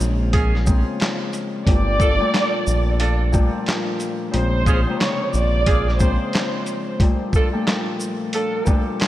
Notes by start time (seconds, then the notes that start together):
Already playing: C#3 F3 G#3 A#3 C4
0.00 A#1, shaker
0.33 C#4 F4 G#4, kick, closed hi-hat
0.55 snare
0.65 C#3 F3 G#3 A#3 C4, kick, shaker
1.00 snare, clap, closed hi-hat
1.33 closed hi-hat, shaker
1.65 G1 A#2 F3 G3 A3 D5, kick, closed hi-hat
1.69 D4
2.00 D4 F4 A4, kick, shaker
2.19 A#2 F3 G3 A3 D4
2.34 snare, clap, closed hi-hat
2.67 A#1, shaker
3.00 D4 F4 A4, closed hi-hat
3.32 A#2 F3 G3 A3 D4, kick, shaker
3.66 snare, clap, closed hi-hat
4.00 closed hi-hat, shaker
4.31 A#1 C#3 F3 G#3 A#3 C4 C5, closed hi-hat
4.66 C#4 F4 G#4, kick, shaker
4.87 C3 C#3 F3 G#3 A#3
5.00 C#5, snare, clap, closed hi-hat
5.34 A#1 D5, shaker
5.66 C#3 F4 G#4, kick, closed hi-hat
5.88 snare
5.99 C#3 F3 G#3 A#3 C4 C5, kick, shaker
6.33 snare, clap, closed hi-hat
6.66 closed hi-hat, shaker
7.00 A#2 F3 G3 A3 D4, kick, closed hi-hat
7.33 D4 F4 A4, kick, shaker
7.52 A#2 F3 G3 A3 D4
7.67 snare, clap, closed hi-hat
8.00 shaker
8.33 D4 F4 A4, closed hi-hat
8.65 A#2 F3 G3 A3 D4, kick, shaker
9.00 snare, clap, closed hi-hat